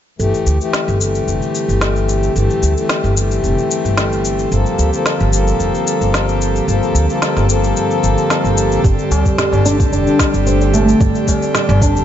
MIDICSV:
0, 0, Header, 1, 8, 480
1, 0, Start_track
1, 0, Tempo, 540541
1, 173, Time_signature, 4, 2, 24, 8
1, 10696, End_track
2, 0, Start_track
2, 0, Title_t, "Singing bowl"
2, 0, Program_c, 0, 14
2, 173, Note_on_c, 0, 69, 63
2, 7863, Note_off_c, 0, 69, 0
2, 10696, End_track
3, 0, Start_track
3, 0, Title_t, "Analog synth pad"
3, 0, Program_c, 1, 89
3, 173, Note_on_c, 1, 50, 78
3, 298, Note_on_c, 1, 60, 68
3, 415, Note_on_c, 1, 67, 83
3, 494, Note_on_c, 1, 55, 70
3, 1396, Note_on_c, 1, 69, 72
3, 10696, Note_off_c, 1, 50, 0
3, 10696, Note_off_c, 1, 55, 0
3, 10696, Note_off_c, 1, 60, 0
3, 10696, Note_off_c, 1, 67, 0
3, 10696, Note_off_c, 1, 69, 0
3, 10696, End_track
4, 0, Start_track
4, 0, Title_t, "Harmonium"
4, 0, Program_c, 2, 20
4, 165, Note_on_c, 2, 52, 74
4, 174, Note_on_c, 2, 57, 64
4, 184, Note_on_c, 2, 67, 86
4, 506, Note_off_c, 2, 52, 0
4, 511, Note_off_c, 2, 57, 0
4, 516, Note_off_c, 2, 67, 0
4, 534, Note_on_c, 2, 52, 83
4, 542, Note_on_c, 2, 57, 76
4, 551, Note_on_c, 2, 67, 90
4, 860, Note_off_c, 2, 52, 0
4, 867, Note_off_c, 2, 57, 0
4, 871, Note_off_c, 2, 67, 0
4, 874, Note_on_c, 2, 52, 77
4, 892, Note_on_c, 2, 57, 69
4, 910, Note_on_c, 2, 67, 80
4, 2057, Note_off_c, 2, 52, 0
4, 2066, Note_off_c, 2, 57, 0
4, 2075, Note_off_c, 2, 67, 0
4, 2079, Note_on_c, 2, 52, 76
4, 2088, Note_on_c, 2, 57, 69
4, 2098, Note_on_c, 2, 67, 85
4, 2423, Note_off_c, 2, 52, 0
4, 2428, Note_off_c, 2, 57, 0
4, 2433, Note_off_c, 2, 67, 0
4, 2450, Note_on_c, 2, 52, 89
4, 2461, Note_on_c, 2, 57, 76
4, 2471, Note_on_c, 2, 67, 92
4, 2781, Note_off_c, 2, 52, 0
4, 2786, Note_off_c, 2, 57, 0
4, 2791, Note_off_c, 2, 67, 0
4, 2795, Note_on_c, 2, 52, 73
4, 2813, Note_on_c, 2, 57, 74
4, 2830, Note_on_c, 2, 67, 84
4, 3977, Note_off_c, 2, 52, 0
4, 3986, Note_off_c, 2, 57, 0
4, 3995, Note_off_c, 2, 67, 0
4, 4005, Note_on_c, 2, 53, 81
4, 4014, Note_on_c, 2, 58, 73
4, 4023, Note_on_c, 2, 69, 85
4, 4347, Note_off_c, 2, 53, 0
4, 4351, Note_off_c, 2, 58, 0
4, 4355, Note_off_c, 2, 69, 0
4, 4373, Note_on_c, 2, 53, 82
4, 4381, Note_on_c, 2, 58, 76
4, 4391, Note_on_c, 2, 69, 97
4, 4700, Note_off_c, 2, 53, 0
4, 4707, Note_off_c, 2, 58, 0
4, 4711, Note_off_c, 2, 69, 0
4, 4714, Note_on_c, 2, 53, 83
4, 4732, Note_on_c, 2, 58, 73
4, 4749, Note_on_c, 2, 69, 85
4, 5897, Note_off_c, 2, 53, 0
4, 5906, Note_off_c, 2, 58, 0
4, 5914, Note_off_c, 2, 69, 0
4, 5920, Note_on_c, 2, 53, 86
4, 5928, Note_on_c, 2, 58, 74
4, 5937, Note_on_c, 2, 69, 91
4, 6264, Note_off_c, 2, 53, 0
4, 6268, Note_off_c, 2, 58, 0
4, 6272, Note_off_c, 2, 69, 0
4, 6287, Note_on_c, 2, 53, 89
4, 6297, Note_on_c, 2, 58, 82
4, 6306, Note_on_c, 2, 69, 96
4, 6618, Note_off_c, 2, 53, 0
4, 6624, Note_off_c, 2, 58, 0
4, 6629, Note_off_c, 2, 69, 0
4, 6631, Note_on_c, 2, 53, 82
4, 6649, Note_on_c, 2, 58, 77
4, 6669, Note_on_c, 2, 69, 98
4, 7815, Note_off_c, 2, 53, 0
4, 7824, Note_off_c, 2, 58, 0
4, 7834, Note_off_c, 2, 69, 0
4, 10696, End_track
5, 0, Start_track
5, 0, Title_t, "Oud"
5, 0, Program_c, 3, 24
5, 7853, Note_on_c, 3, 55, 73
5, 8082, Note_off_c, 3, 55, 0
5, 8092, Note_on_c, 3, 55, 69
5, 8321, Note_off_c, 3, 55, 0
5, 8331, Note_on_c, 3, 55, 88
5, 8561, Note_off_c, 3, 55, 0
5, 8573, Note_on_c, 3, 62, 93
5, 8646, Note_off_c, 3, 62, 0
5, 8813, Note_on_c, 3, 62, 74
5, 9042, Note_off_c, 3, 62, 0
5, 9055, Note_on_c, 3, 55, 69
5, 9283, Note_off_c, 3, 55, 0
5, 9296, Note_on_c, 3, 60, 93
5, 9416, Note_off_c, 3, 60, 0
5, 9535, Note_on_c, 3, 57, 93
5, 9607, Note_off_c, 3, 57, 0
5, 9775, Note_on_c, 3, 55, 71
5, 10003, Note_off_c, 3, 55, 0
5, 10017, Note_on_c, 3, 55, 73
5, 10244, Note_off_c, 3, 55, 0
5, 10253, Note_on_c, 3, 55, 91
5, 10482, Note_off_c, 3, 55, 0
5, 10493, Note_on_c, 3, 62, 94
5, 10566, Note_off_c, 3, 62, 0
5, 10696, End_track
6, 0, Start_track
6, 0, Title_t, "Upright bass"
6, 0, Program_c, 4, 32
6, 173, Note_on_c, 4, 31, 85
6, 268, Note_off_c, 4, 31, 0
6, 413, Note_on_c, 4, 38, 73
6, 508, Note_off_c, 4, 38, 0
6, 782, Note_on_c, 4, 31, 87
6, 1087, Note_off_c, 4, 31, 0
6, 1134, Note_on_c, 4, 29, 79
6, 1228, Note_off_c, 4, 29, 0
6, 1499, Note_on_c, 4, 31, 81
6, 2045, Note_off_c, 4, 31, 0
6, 2092, Note_on_c, 4, 31, 88
6, 2187, Note_off_c, 4, 31, 0
6, 2333, Note_on_c, 4, 38, 75
6, 2428, Note_off_c, 4, 38, 0
6, 2699, Note_on_c, 4, 31, 94
6, 3005, Note_off_c, 4, 31, 0
6, 3050, Note_on_c, 4, 29, 80
6, 3146, Note_off_c, 4, 29, 0
6, 3418, Note_on_c, 4, 31, 81
6, 3965, Note_off_c, 4, 31, 0
6, 4010, Note_on_c, 4, 31, 91
6, 4107, Note_off_c, 4, 31, 0
6, 4251, Note_on_c, 4, 38, 77
6, 4347, Note_off_c, 4, 38, 0
6, 4622, Note_on_c, 4, 31, 96
6, 4927, Note_off_c, 4, 31, 0
6, 4973, Note_on_c, 4, 29, 78
6, 5068, Note_off_c, 4, 29, 0
6, 5338, Note_on_c, 4, 31, 79
6, 5885, Note_off_c, 4, 31, 0
6, 5932, Note_on_c, 4, 31, 87
6, 6027, Note_off_c, 4, 31, 0
6, 6170, Note_on_c, 4, 38, 87
6, 6266, Note_off_c, 4, 38, 0
6, 6541, Note_on_c, 4, 31, 96
6, 6847, Note_off_c, 4, 31, 0
6, 7134, Note_on_c, 4, 31, 80
6, 7228, Note_off_c, 4, 31, 0
6, 7497, Note_on_c, 4, 31, 85
6, 7805, Note_off_c, 4, 31, 0
6, 7851, Note_on_c, 4, 31, 85
6, 7947, Note_off_c, 4, 31, 0
6, 8091, Note_on_c, 4, 38, 77
6, 8187, Note_off_c, 4, 38, 0
6, 8457, Note_on_c, 4, 31, 95
6, 8765, Note_off_c, 4, 31, 0
6, 8811, Note_on_c, 4, 29, 82
6, 8907, Note_off_c, 4, 29, 0
6, 9179, Note_on_c, 4, 31, 77
6, 9726, Note_off_c, 4, 31, 0
6, 9772, Note_on_c, 4, 31, 86
6, 9868, Note_off_c, 4, 31, 0
6, 10013, Note_on_c, 4, 38, 81
6, 10108, Note_off_c, 4, 38, 0
6, 10380, Note_on_c, 4, 31, 101
6, 10686, Note_off_c, 4, 31, 0
6, 10696, End_track
7, 0, Start_track
7, 0, Title_t, "Tabla"
7, 8096, Note_on_c, 9, 60, 65
7, 8184, Note_off_c, 9, 60, 0
7, 8218, Note_on_c, 9, 64, 68
7, 8306, Note_off_c, 9, 64, 0
7, 8459, Note_on_c, 9, 60, 61
7, 8548, Note_off_c, 9, 60, 0
7, 9422, Note_on_c, 9, 63, 51
7, 9511, Note_off_c, 9, 63, 0
7, 9533, Note_on_c, 9, 60, 61
7, 9540, Note_on_c, 9, 63, 33
7, 9621, Note_off_c, 9, 60, 0
7, 9629, Note_off_c, 9, 63, 0
7, 10020, Note_on_c, 9, 60, 69
7, 10109, Note_off_c, 9, 60, 0
7, 10384, Note_on_c, 9, 60, 77
7, 10473, Note_off_c, 9, 60, 0
7, 10622, Note_on_c, 9, 64, 71
7, 10624, Note_on_c, 9, 63, 31
7, 10626, Note_on_c, 9, 60, 31
7, 10696, Note_off_c, 9, 60, 0
7, 10696, Note_off_c, 9, 63, 0
7, 10696, Note_off_c, 9, 64, 0
7, 10696, End_track
8, 0, Start_track
8, 0, Title_t, "Drums"
8, 175, Note_on_c, 9, 69, 35
8, 263, Note_off_c, 9, 69, 0
8, 303, Note_on_c, 9, 69, 20
8, 392, Note_off_c, 9, 69, 0
8, 414, Note_on_c, 9, 69, 71
8, 503, Note_off_c, 9, 69, 0
8, 543, Note_on_c, 9, 69, 29
8, 632, Note_off_c, 9, 69, 0
8, 652, Note_on_c, 9, 38, 90
8, 654, Note_on_c, 9, 69, 38
8, 741, Note_off_c, 9, 38, 0
8, 743, Note_off_c, 9, 69, 0
8, 783, Note_on_c, 9, 69, 19
8, 872, Note_off_c, 9, 69, 0
8, 894, Note_on_c, 9, 69, 74
8, 983, Note_off_c, 9, 69, 0
8, 1022, Note_on_c, 9, 69, 31
8, 1111, Note_off_c, 9, 69, 0
8, 1136, Note_on_c, 9, 69, 37
8, 1225, Note_off_c, 9, 69, 0
8, 1264, Note_on_c, 9, 69, 21
8, 1353, Note_off_c, 9, 69, 0
8, 1375, Note_on_c, 9, 69, 62
8, 1464, Note_off_c, 9, 69, 0
8, 1504, Note_on_c, 9, 69, 28
8, 1593, Note_off_c, 9, 69, 0
8, 1611, Note_on_c, 9, 38, 88
8, 1613, Note_on_c, 9, 69, 38
8, 1700, Note_off_c, 9, 38, 0
8, 1702, Note_off_c, 9, 69, 0
8, 1742, Note_on_c, 9, 69, 21
8, 1831, Note_off_c, 9, 69, 0
8, 1855, Note_on_c, 9, 69, 67
8, 1944, Note_off_c, 9, 69, 0
8, 1982, Note_on_c, 9, 69, 29
8, 2071, Note_off_c, 9, 69, 0
8, 2095, Note_on_c, 9, 69, 39
8, 2184, Note_off_c, 9, 69, 0
8, 2224, Note_on_c, 9, 69, 21
8, 2313, Note_off_c, 9, 69, 0
8, 2334, Note_on_c, 9, 69, 74
8, 2423, Note_off_c, 9, 69, 0
8, 2462, Note_on_c, 9, 69, 32
8, 2551, Note_off_c, 9, 69, 0
8, 2570, Note_on_c, 9, 38, 99
8, 2572, Note_on_c, 9, 69, 40
8, 2658, Note_off_c, 9, 38, 0
8, 2661, Note_off_c, 9, 69, 0
8, 2702, Note_on_c, 9, 69, 20
8, 2791, Note_off_c, 9, 69, 0
8, 2813, Note_on_c, 9, 69, 79
8, 2902, Note_off_c, 9, 69, 0
8, 2941, Note_on_c, 9, 69, 32
8, 3030, Note_off_c, 9, 69, 0
8, 3053, Note_on_c, 9, 69, 41
8, 3142, Note_off_c, 9, 69, 0
8, 3181, Note_on_c, 9, 69, 21
8, 3270, Note_off_c, 9, 69, 0
8, 3294, Note_on_c, 9, 69, 69
8, 3383, Note_off_c, 9, 69, 0
8, 3421, Note_on_c, 9, 69, 30
8, 3510, Note_off_c, 9, 69, 0
8, 3529, Note_on_c, 9, 38, 86
8, 3532, Note_on_c, 9, 69, 39
8, 3618, Note_off_c, 9, 38, 0
8, 3621, Note_off_c, 9, 69, 0
8, 3663, Note_on_c, 9, 69, 21
8, 3752, Note_off_c, 9, 69, 0
8, 3772, Note_on_c, 9, 69, 74
8, 3861, Note_off_c, 9, 69, 0
8, 3899, Note_on_c, 9, 69, 30
8, 3988, Note_off_c, 9, 69, 0
8, 4012, Note_on_c, 9, 69, 40
8, 4101, Note_off_c, 9, 69, 0
8, 4139, Note_on_c, 9, 69, 21
8, 4228, Note_off_c, 9, 69, 0
8, 4251, Note_on_c, 9, 69, 72
8, 4340, Note_off_c, 9, 69, 0
8, 4380, Note_on_c, 9, 69, 33
8, 4469, Note_off_c, 9, 69, 0
8, 4490, Note_on_c, 9, 38, 95
8, 4493, Note_on_c, 9, 69, 42
8, 4579, Note_off_c, 9, 38, 0
8, 4582, Note_off_c, 9, 69, 0
8, 4620, Note_on_c, 9, 69, 20
8, 4709, Note_off_c, 9, 69, 0
8, 4731, Note_on_c, 9, 69, 82
8, 4820, Note_off_c, 9, 69, 0
8, 4860, Note_on_c, 9, 69, 32
8, 4949, Note_off_c, 9, 69, 0
8, 4973, Note_on_c, 9, 69, 42
8, 5062, Note_off_c, 9, 69, 0
8, 5103, Note_on_c, 9, 69, 22
8, 5192, Note_off_c, 9, 69, 0
8, 5214, Note_on_c, 9, 69, 71
8, 5303, Note_off_c, 9, 69, 0
8, 5342, Note_on_c, 9, 69, 31
8, 5431, Note_off_c, 9, 69, 0
8, 5453, Note_on_c, 9, 38, 86
8, 5455, Note_on_c, 9, 69, 44
8, 5541, Note_off_c, 9, 38, 0
8, 5544, Note_off_c, 9, 69, 0
8, 5584, Note_on_c, 9, 69, 22
8, 5673, Note_off_c, 9, 69, 0
8, 5696, Note_on_c, 9, 69, 73
8, 5785, Note_off_c, 9, 69, 0
8, 5823, Note_on_c, 9, 69, 31
8, 5912, Note_off_c, 9, 69, 0
8, 5936, Note_on_c, 9, 69, 40
8, 6024, Note_off_c, 9, 69, 0
8, 6064, Note_on_c, 9, 69, 20
8, 6153, Note_off_c, 9, 69, 0
8, 6175, Note_on_c, 9, 69, 75
8, 6264, Note_off_c, 9, 69, 0
8, 6304, Note_on_c, 9, 69, 32
8, 6393, Note_off_c, 9, 69, 0
8, 6412, Note_on_c, 9, 38, 94
8, 6415, Note_on_c, 9, 69, 43
8, 6501, Note_off_c, 9, 38, 0
8, 6503, Note_off_c, 9, 69, 0
8, 6541, Note_on_c, 9, 38, 29
8, 6544, Note_on_c, 9, 69, 20
8, 6630, Note_off_c, 9, 38, 0
8, 6633, Note_off_c, 9, 69, 0
8, 6654, Note_on_c, 9, 69, 83
8, 6743, Note_off_c, 9, 69, 0
8, 6783, Note_on_c, 9, 69, 34
8, 6871, Note_off_c, 9, 69, 0
8, 6895, Note_on_c, 9, 69, 43
8, 6984, Note_off_c, 9, 69, 0
8, 7023, Note_on_c, 9, 69, 22
8, 7112, Note_off_c, 9, 69, 0
8, 7136, Note_on_c, 9, 69, 72
8, 7225, Note_off_c, 9, 69, 0
8, 7263, Note_on_c, 9, 69, 30
8, 7352, Note_off_c, 9, 69, 0
8, 7373, Note_on_c, 9, 38, 86
8, 7376, Note_on_c, 9, 69, 40
8, 7462, Note_off_c, 9, 38, 0
8, 7464, Note_off_c, 9, 69, 0
8, 7502, Note_on_c, 9, 69, 22
8, 7591, Note_off_c, 9, 69, 0
8, 7613, Note_on_c, 9, 69, 76
8, 7702, Note_off_c, 9, 69, 0
8, 7742, Note_on_c, 9, 69, 32
8, 7831, Note_off_c, 9, 69, 0
8, 7853, Note_on_c, 9, 36, 119
8, 7855, Note_on_c, 9, 69, 41
8, 7942, Note_off_c, 9, 36, 0
8, 7944, Note_off_c, 9, 69, 0
8, 7983, Note_on_c, 9, 69, 21
8, 8072, Note_off_c, 9, 69, 0
8, 8095, Note_on_c, 9, 69, 70
8, 8184, Note_off_c, 9, 69, 0
8, 8220, Note_on_c, 9, 36, 62
8, 8222, Note_on_c, 9, 69, 33
8, 8309, Note_off_c, 9, 36, 0
8, 8311, Note_off_c, 9, 69, 0
8, 8333, Note_on_c, 9, 38, 73
8, 8336, Note_on_c, 9, 69, 41
8, 8422, Note_off_c, 9, 38, 0
8, 8425, Note_off_c, 9, 69, 0
8, 8465, Note_on_c, 9, 69, 20
8, 8553, Note_off_c, 9, 69, 0
8, 8575, Note_on_c, 9, 69, 80
8, 8664, Note_off_c, 9, 69, 0
8, 8701, Note_on_c, 9, 36, 96
8, 8703, Note_on_c, 9, 69, 34
8, 8790, Note_off_c, 9, 36, 0
8, 8792, Note_off_c, 9, 69, 0
8, 8816, Note_on_c, 9, 69, 42
8, 8905, Note_off_c, 9, 69, 0
8, 8943, Note_on_c, 9, 69, 21
8, 9032, Note_off_c, 9, 69, 0
8, 9052, Note_on_c, 9, 38, 69
8, 9053, Note_on_c, 9, 36, 87
8, 9055, Note_on_c, 9, 69, 70
8, 9141, Note_off_c, 9, 38, 0
8, 9142, Note_off_c, 9, 36, 0
8, 9144, Note_off_c, 9, 69, 0
8, 9182, Note_on_c, 9, 69, 30
8, 9271, Note_off_c, 9, 69, 0
8, 9295, Note_on_c, 9, 69, 41
8, 9383, Note_off_c, 9, 69, 0
8, 9424, Note_on_c, 9, 69, 21
8, 9513, Note_off_c, 9, 69, 0
8, 9536, Note_on_c, 9, 69, 73
8, 9625, Note_off_c, 9, 69, 0
8, 9666, Note_on_c, 9, 69, 31
8, 9755, Note_off_c, 9, 69, 0
8, 9773, Note_on_c, 9, 36, 126
8, 9775, Note_on_c, 9, 69, 43
8, 9862, Note_off_c, 9, 36, 0
8, 9863, Note_off_c, 9, 69, 0
8, 9903, Note_on_c, 9, 69, 21
8, 9992, Note_off_c, 9, 69, 0
8, 10013, Note_on_c, 9, 36, 55
8, 10015, Note_on_c, 9, 69, 80
8, 10102, Note_off_c, 9, 36, 0
8, 10104, Note_off_c, 9, 69, 0
8, 10144, Note_on_c, 9, 69, 33
8, 10232, Note_off_c, 9, 69, 0
8, 10253, Note_on_c, 9, 38, 77
8, 10255, Note_on_c, 9, 69, 42
8, 10341, Note_off_c, 9, 38, 0
8, 10344, Note_off_c, 9, 69, 0
8, 10385, Note_on_c, 9, 69, 21
8, 10473, Note_off_c, 9, 69, 0
8, 10493, Note_on_c, 9, 36, 105
8, 10497, Note_on_c, 9, 69, 81
8, 10582, Note_off_c, 9, 36, 0
8, 10586, Note_off_c, 9, 69, 0
8, 10626, Note_on_c, 9, 69, 32
8, 10696, Note_off_c, 9, 69, 0
8, 10696, End_track
0, 0, End_of_file